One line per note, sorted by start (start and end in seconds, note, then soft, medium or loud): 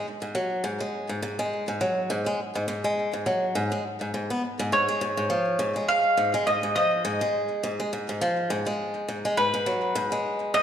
0.22 0.34 G#2 medium
0.35 0.63 F#3 medium
0.64 0.79 G#2 medium
0.80 1.08 G#3 medium
1.09 1.21 G#2 medium
1.22 1.38 G#2 medium
1.39 1.66 G#3 medium
1.68 1.80 G#2 medium
1.81 2.08 F#3 medium
2.10 2.25 G#2 loud
2.26 2.39 G#3 medium
2.55 2.67 G#2 medium
2.68 2.83 G#2 medium
2.84 3.12 G#3 medium
3.13 3.25 G#2 medium
3.26 3.54 F#3 medium
3.55 3.71 G#2 medium
3.72 3.83 G#3 medium
4.01 4.13 G#2 medium
4.14 4.29 G#2 medium
4.30 4.42 B3 medium
4.59 4.71 G#2 medium
4.72 4.87 G#2 medium
4.72 5.92 C#5 medium
4.88 5.00 G#3 medium
5.01 5.16 G#2 medium
5.17 5.29 G#2 medium
5.30 5.58 F3 medium
5.59 5.74 G#2 medium
5.76 6.16 G#3 medium
5.89 6.48 F5 loud
6.17 6.33 G#2 medium
6.34 6.45 G#3 medium
6.47 6.61 G#2 medium
6.47 6.74 D#5 medium
6.63 6.75 G#2 medium
6.76 7.03 F3 medium
6.76 9.05 D#5 medium
7.05 7.20 G#2 loud
7.21 7.62 G#3 medium
7.63 7.79 G#2 medium
7.80 7.91 G#3 medium
7.93 8.07 G#2 medium
8.09 8.21 G#2 medium
8.21 8.49 F3 medium
8.50 8.66 G#2 medium
8.66 9.07 G#3 medium
9.08 9.24 G#2 medium
9.25 9.36 G#3 medium
9.37 9.52 G#2 medium
9.37 10.54 B4 medium
9.54 9.66 G#2 medium
9.66 9.94 F#3 medium
9.95 10.11 G#2 medium
10.12 10.53 G#3 medium
10.54 10.63 G#2 medium
10.54 10.63 D#5 loud